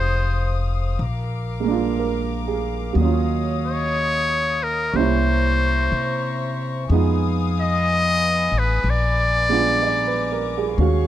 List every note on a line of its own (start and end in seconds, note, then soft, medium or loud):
0.00 0.95 F1 medium
0.00 0.98 G#3 soft
0.00 0.99 C4 soft
0.00 0.99 D#4 soft
0.00 1.00 G4 soft
0.00 0.65 C5 medium
0.00 0.97 C5 medium
0.00 4.89 F5 medium
0.00 0.97 D#6 medium
0.99 2.92 A#1 medium
0.99 2.94 A#4 medium
0.99 2.94 D6 medium
1.60 2.94 G#3 soft
1.60 2.95 A#3 soft
1.67 2.97 D4 soft
1.67 2.99 F4 soft
1.99 2.76 A#4 soft
2.48 3.17 G#4 soft
2.93 4.89 D#2 medium
2.93 4.92 F#3 soft
2.93 4.93 A#3 soft
2.93 4.91 D#5 medium
2.93 4.92 D#6 medium
2.97 4.95 C#4 soft
2.97 4.92 C#5 medium
3.05 4.97 F4 soft
3.66 4.65 C#5 medium
4.63 4.98 A#4 medium
4.93 5.87 C2 medium
4.93 6.89 G3 medium
4.93 6.90 A#3 soft
4.93 6.91 C#4 soft
4.93 6.87 C5 medium
4.93 6.90 C5 medium
4.93 6.87 E5 medium
4.93 6.87 A#5 medium
4.93 6.87 C#6 medium
4.98 6.92 E4 medium
5.92 6.85 C3 medium
6.90 8.47 F2 medium
6.90 8.85 G#3 soft
6.90 10.75 B3 medium
6.90 8.85 B3 soft
6.90 8.85 D#4 soft
6.90 8.86 F4 soft
6.90 8.82 F5 medium
6.90 10.74 G#5 medium
6.90 8.82 D#6 medium
7.60 8.60 D#5 loud
8.52 8.82 A1 medium
8.59 8.92 B4 medium
8.84 10.74 A#1 medium
8.84 10.76 A#5 medium
8.84 10.76 D6 medium
8.90 10.81 D5 medium
9.49 10.77 G#3 soft
9.49 10.79 B3 soft
9.49 10.79 D4 soft
9.49 10.80 F4 soft
9.83 10.27 D5 soft
10.07 10.47 B4 soft
10.32 10.61 A#4 soft
10.58 10.89 G#4 soft
10.77 11.07 D#2 medium
10.77 11.07 G#3 soft
10.77 11.07 C#4 soft
10.77 11.07 F#4 medium
10.77 11.07 G#4 medium
10.77 11.07 F5 medium
10.77 11.07 F5 soft
10.77 11.07 C#6 medium
10.81 11.07 F#4 soft